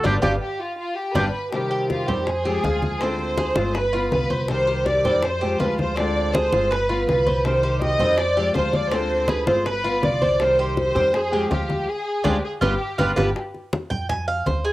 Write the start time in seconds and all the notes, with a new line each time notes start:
0.04 G1 G3 B3 D4 F4 G4, high bongo, high conga
0.22 G1 G3 B3 D4 F4 G4, high bongo, high conga
0.41 G4
0.60 F4
0.78 F4
0.95 G4
1.14 G1 G3 B3 D4 F4 G4 B4, high bongo, high conga
1.52 C3 D#3 G3 C4 G4, high bongo, high conga
1.71 G4, high bongo, high conga
1.90 F4, high bongo, high conga
2.07 F2 D#3 G3 C4 G4 C5, high bongo, high conga, low conga
2.20 G4
2.27 G#4, muted nylon-string guitar stroke, high bongo, high conga
2.45 F3 G#3 C4 G4, high conga
2.64 D2 F3 G#3 C4 F4, high bongo, low bongo, high conga
2.82 high bongo, high conga
3.00 D3 G#3 C4 F4 C5, high bongo, high conga
3.19 high bongo, high conga
3.38 G#4, high bongo, high conga
3.56 G1 G#3 C4 F4, high bongo, high conga
3.75 B4, muted nylon-string guitar stroke, high bongo, high conga
3.93 B3 F4, high conga
4.11 C2 G3 B3 F4 B4, high bongo, low bongo, high conga
4.30 C5, high bongo, high conga
4.48 C3 D#3 G3 C4 G4 C5, high bongo, high conga
4.67 G4, high bongo, high conga
4.86 D5, high bongo, high conga
5.05 F2 D#3 G3 C4 G4 C5, high bongo, high conga, low conga
5.23 C5, muted nylon-string guitar stroke, high bongo, high conga
5.41 F3 G#3 C4 G4, high conga
5.60 D2 F3 G#3 C4 F4 G4 B4, high bongo, low bongo, high conga
5.78 C5, high bongo, high conga
5.96 D3 G#3 C4 D5, high bongo, high conga
6.00 F4
6.16 high bongo, high conga
6.34 G#4 C5, high bongo, high conga
6.53 G1 G#3 C4 F4, high bongo, high conga
6.71 B4, muted nylon-string guitar stroke, high bongo, high conga
6.89 B3 F4, high conga
7.07 C2 G3 B3 F4 B4, high bongo, low bongo, high conga
7.27 C5, high bongo, high conga
7.45 C3 D#3 G3 C4 G4 C5, high bongo, high conga
7.63 G4, high bongo, high conga
7.81 D#5, high bongo, high conga
7.99 F2 D#3 G3 C4 G4 C5, high bongo, high conga, low conga
8.17 D5, muted nylon-string guitar stroke, high bongo, high conga
8.37 F3 G#3 C4 G4, high conga
8.54 D2 F3 G#3 C4 F4 G4 C5, high bongo, low bongo, high conga
8.73 D5, high bongo, high conga
8.91 D3 G#3 C4 F4 C5, high bongo, high conga
9.10 high bongo, high conga
9.28 G#4 B4, high bongo, high conga
9.47 G1 G#3 C4 F4 C5, high bongo, high conga
9.66 B4, muted nylon-string guitar stroke, high bongo, high conga
9.84 B3 F4, high conga
10.03 C2 G3 B3 F4 D5, high bongo, low bongo, high conga
10.22 C5, high bongo, high conga
10.40 C3 D#3 G3 C4 G4 C5, high bongo
10.59 G4, high bongo, high conga
10.77 C5, high bongo, high conga
10.95 F2 D#3 G3 C4 G4 C5, high bongo, high conga, low conga
11.13 G#4, muted nylon-string guitar stroke, high bongo, high conga
11.32 F3 G#3 C4 G4, high conga
11.50 D2 F3 G#3 C4 F4 G4, high bongo, low bongo, high conga
11.69 high bongo, high conga
11.88 G#4
12.24 D2 G#3 C4 D4 F4 G4 G#4, low bongo, high conga
12.44 G#4
12.61 G1 G3 B3 D4 F4 G4 B4, low bongo, high conga
12.98 G1 G3 B3 D4 F4 G4 B4, low bongo, high conga
13.16 G1 G3 B3 D4 F4 G4 B4, low bongo, high conga
13.36 high bongo, high conga
13.54 high bongo, high conga
13.73 high bongo, high conga
13.90 F2 G5, high conga, low conga
14.09 G#5, high bongo, high conga, low conga
14.28 F5, high bongo, high conga
14.46 D2 C5, high bongo, low bongo, high conga
14.65 G#4, high bongo